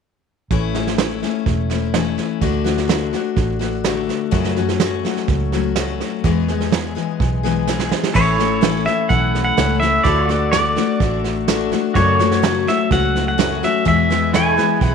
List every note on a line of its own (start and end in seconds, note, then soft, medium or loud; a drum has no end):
0.51 1.22 A1 medium
0.51 0.75 A2 medium
0.51 0.75 E3 medium
0.51 0.75 A3 medium
0.51 0.75 C#4 medium
0.51 0.73 E4 medium
0.51 kick medium
0.51 snare soft
0.74 0.98 A3 soft
0.74 0.98 C#4 soft
0.74 0.98 E4 soft
0.74 snare soft
0.87 snare soft
0.98 1.22 E3 medium
0.98 1.23 A3 medium
0.98 1.22 C#4 medium
0.98 1.21 E4 medium
0.98 snare medium
0.98 hi-hat pedal medium
1.22 1.72 A3 soft
1.22 1.71 C#4 soft
1.22 1.70 E4 soft
1.22 snare soft
1.46 2.18 E1 medium
1.46 kick medium
1.46 snare soft
1.70 1.94 A3 soft
1.70 1.95 C#4 soft
1.70 1.94 E4 soft
1.70 snare soft
1.94 2.41 E3 medium
1.94 2.41 A3 medium
1.94 2.42 C#4 medium
1.94 2.42 E4 medium
1.94 snare medium
1.94 hi-hat pedal medium
2.18 snare soft
2.41 3.13 D2 medium
2.41 2.66 D3 medium
2.41 2.66 A3 medium
2.41 2.65 D4 medium
2.41 2.63 F#4 medium
2.41 kick medium
2.41 snare soft
2.64 2.88 A3 soft
2.64 2.88 D4 soft
2.64 2.88 F#4 medium
2.64 snare soft
2.77 snare soft
2.88 3.12 D3 medium
2.88 3.13 A3 medium
2.88 3.12 D4 medium
2.88 3.12 F#4 medium
2.88 snare medium
2.88 hi-hat pedal medium
3.13 3.60 A3 soft
3.13 3.59 D4 soft
3.13 3.58 F#4 medium
3.13 snare soft
3.36 4.09 A1 medium
3.36 kick medium
3.36 snare soft
3.59 3.83 A3 soft
3.59 3.84 D4 soft
3.59 3.84 F#4 medium
3.59 snare soft
3.84 4.32 D3 medium
3.84 4.30 A3 medium
3.84 4.32 D4 medium
3.84 4.31 F#4 medium
3.84 snare medium
3.84 hi-hat pedal medium
4.09 snare soft
4.31 4.56 F#2 medium
4.31 5.04 F#2 medium
4.31 4.56 C#3 medium
4.31 4.56 F#3 medium
4.31 4.56 A3 medium
4.31 4.57 C#4 medium
4.31 4.56 F#4 medium
4.31 kick loud
4.31 snare soft
4.44 snare soft
4.56 4.79 F#3 soft
4.56 4.79 A3 soft
4.56 4.80 C#4 medium
4.56 4.81 F#4 medium
4.56 snare soft
4.68 snare soft
4.80 5.04 F#3 medium
4.80 5.04 A3 medium
4.80 5.04 C#4 medium
4.80 5.03 F#4 medium
4.80 snare loud
4.80 hi-hat pedal medium
5.05 5.53 F#3 soft
5.05 5.53 A3 soft
5.05 5.52 C#4 soft
5.05 5.52 F#4 soft
5.05 snare soft
5.17 snare soft
5.28 6.00 C#2 medium
5.28 kick medium
5.28 snare soft
5.52 5.76 F#3 soft
5.52 5.77 A3 soft
5.52 5.77 C#4 medium
5.52 5.76 F#4 soft
5.52 snare soft
5.76 6.24 F#3 medium
5.76 6.24 A3 medium
5.76 6.25 C#4 medium
5.76 6.25 F#4 medium
5.76 snare medium
5.76 hi-hat pedal medium
6.00 snare soft
6.24 6.48 E2 medium
6.24 6.96 E2 medium
6.24 6.48 B2 medium
6.24 6.48 E3 medium
6.24 6.48 G#3 medium
6.24 6.48 B3 medium
6.24 6.48 G#4 medium
6.24 kick medium
6.24 snare soft
6.48 6.70 E3 soft
6.48 6.72 G#3 soft
6.48 6.72 B3 soft
6.48 6.72 G#4 medium
6.48 snare soft
6.61 snare soft
6.72 6.95 E3 medium
6.72 6.95 G#3 medium
6.72 6.94 B3 medium
6.72 6.94 G#4 medium
6.72 snare medium
6.72 hi-hat pedal medium
6.95 7.43 E3 soft
6.95 7.43 G#3 soft
6.95 7.43 B3 soft
6.95 7.42 G#4 soft
6.95 snare soft
7.20 7.91 B1 medium
7.20 kick medium
7.20 snare soft
7.43 7.66 E3 soft
7.43 7.67 G#3 soft
7.43 7.67 B3 medium
7.43 7.67 G#4 medium
7.43 snare soft
7.67 8.13 E3 soft
7.67 8.15 G#3 medium
7.67 8.15 B3 medium
7.67 8.15 G#4 medium
7.67 snare soft
7.67 hi-hat pedal medium
7.79 snare medium
7.91 snare medium
8.03 snare medium
8.14 8.86 A1 medium
8.14 8.38 A2 medium
8.14 8.38 E3 medium
8.14 8.39 A3 medium
8.14 8.38 C#4 medium
8.14 10.03 E4 medium
8.14 8.37 E4 medium
8.14 10.03 A4 medium
8.14 10.04 C#5 medium
8.14 8.85 C#5 medium
8.14 kick medium
8.14 snare soft
8.14 crash medium
8.38 8.61 A3 soft
8.38 8.61 C#4 soft
8.38 8.61 E4 soft
8.38 snare soft
8.61 8.85 A2 medium
8.61 8.86 E3 medium
8.61 8.86 A3 medium
8.61 8.85 C#4 medium
8.61 8.84 E4 medium
8.61 snare medium
8.61 hi-hat pedal medium
8.85 9.09 A3 soft
8.85 9.09 C#4 soft
8.85 9.09 E4 medium
8.85 9.10 E5 medium
8.85 snare soft
9.09 9.51 B1 medium
9.09 9.57 E3 soft
9.09 9.58 A3 medium
9.09 9.57 C#4 medium
9.09 9.58 E4 medium
9.09 9.43 F#5 medium
9.09 kick loud
9.09 snare soft
9.35 snare soft
9.45 9.79 F#5 medium
9.57 9.98 C#2 medium
9.57 9.81 A2 medium
9.57 9.82 E3 medium
9.57 9.81 A3 medium
9.57 9.81 C#4 medium
9.57 9.79 E4 medium
9.57 snare loud
9.57 hi-hat pedal medium
9.80 10.03 A3 soft
9.80 10.05 C#4 soft
9.80 10.05 E4 medium
9.80 10.05 E5 medium
9.80 snare soft
10.04 10.77 D2 medium
10.04 10.28 D3 medium
10.04 10.29 A3 medium
10.04 10.28 D4 medium
10.04 10.29 E4 medium
10.04 10.28 F#4 medium
10.04 11.94 A4 medium
10.04 10.26 C#5 medium
10.04 10.50 D5 medium
10.04 kick loud
10.04 snare soft
10.26 10.53 D4 soft
10.26 10.53 F#4 soft
10.26 11.93 F#4 medium
10.26 11.94 D5 medium
10.26 snare soft
10.31 10.53 A3 soft
10.52 10.77 D3 medium
10.52 10.77 A3 medium
10.52 10.76 D4 medium
10.52 10.75 F#4 medium
10.52 11.20 D5 medium
10.52 snare loud
10.52 hi-hat pedal medium
10.76 11.00 A3 soft
10.76 11.01 D4 soft
10.76 11.00 F#4 medium
10.76 snare soft
11.00 11.72 A1 medium
11.00 11.46 D3 soft
11.00 11.47 A3 medium
11.00 11.47 D4 medium
11.00 11.48 F#4 medium
11.00 kick loud
11.00 snare soft
11.24 snare soft
11.48 11.72 D3 medium
11.48 11.72 A3 medium
11.48 11.72 D4 medium
11.48 11.71 F#4 medium
11.48 snare medium
11.48 hi-hat pedal medium
11.71 11.95 A3 soft
11.71 11.96 D4 medium
11.71 11.96 F#4 medium
11.71 snare soft
11.94 12.19 F#2 medium
11.94 12.67 F#2 medium
11.94 12.20 C#3 medium
11.94 12.20 F#3 medium
11.94 12.20 A3 medium
11.94 12.19 C#4 medium
11.94 13.83 F#4 medium
11.94 12.18 F#4 medium
11.94 13.84 A4 medium
11.94 12.69 C#5 medium
11.94 12.17 D5 medium
11.94 kick loud
11.94 snare soft
12.17 12.42 C#4 soft
12.17 12.42 F#4 soft
12.17 13.85 C#5 medium
12.17 snare soft
12.21 12.42 F#3 soft
12.21 12.42 A3 soft
12.31 snare soft
12.42 12.66 F#2 medium
12.42 12.67 C#3 medium
12.42 12.67 F#3 medium
12.42 12.67 A3 medium
12.42 12.67 C#4 medium
12.42 12.66 F#4 medium
12.42 snare loud
12.42 hi-hat pedal medium
12.67 12.90 F#3 soft
12.67 12.91 A3 soft
12.67 12.91 C#4 soft
12.67 12.91 F#4 soft
12.67 12.92 E5 medium
12.67 snare soft
12.91 13.62 C#2 medium
12.91 13.37 F#3 medium
12.91 13.37 A3 medium
12.91 13.38 C#4 medium
12.91 13.38 F#4 medium
12.91 13.27 F#5 medium
12.91 kick loud
12.91 snare soft
13.15 snare soft
13.28 13.61 F#5 medium
13.38 13.62 F#2 medium
13.38 13.62 C#3 medium
13.38 13.62 F#3 medium
13.38 13.62 A3 medium
13.38 13.62 C#4 medium
13.38 13.62 F#4 medium
13.38 snare loud
13.38 hi-hat pedal medium
13.63 13.85 F#3 soft
13.63 13.86 A3 soft
13.63 13.86 C#4 soft
13.63 13.86 F#4 medium
13.63 13.87 E5 medium
13.63 snare soft
13.85 14.09 E2 medium
13.85 14.57 E2 medium
13.85 14.09 B2 medium
13.85 14.09 E3 medium
13.85 14.10 G#3 medium
13.85 14.09 B3 medium
13.85 14.09 E4 medium
13.85 14.35 E5 medium
13.85 kick medium
13.85 snare soft
14.10 14.33 E3 soft
14.10 14.34 G#3 soft
14.10 14.34 B3 medium
14.10 14.34 E4 medium
14.10 snare soft
14.33 14.57 E2 medium
14.33 14.58 B2 medium
14.33 14.57 E3 medium
14.33 14.56 G#3 medium
14.33 14.56 B3 medium
14.33 14.95 E4 medium
14.33 14.55 E4 medium
14.33 14.54 A4 medium
14.33 14.60 C#5 medium
14.33 14.84 G#5 medium
14.33 snare loud
14.33 hi-hat pedal medium
14.54 14.81 G#3 soft
14.54 14.81 B3 soft
14.54 14.81 E4 soft
14.54 14.95 G#4 medium
14.54 snare soft
14.58 14.81 E3 soft
14.58 14.95 B4 medium
14.81 14.95 B1 medium
14.81 14.95 E3 medium
14.81 14.95 G#3 medium
14.81 14.95 B3 medium
14.81 14.95 E4 medium
14.81 14.95 F#5 medium
14.81 kick loud
14.81 snare soft